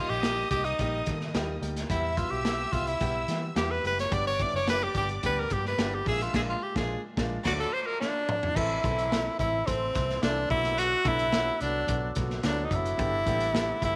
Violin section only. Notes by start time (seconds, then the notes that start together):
Already playing: D#5 D#6
1.89 E5 E6
4.12 D5 D6
6.06 E5 E6
7.44 D5 D6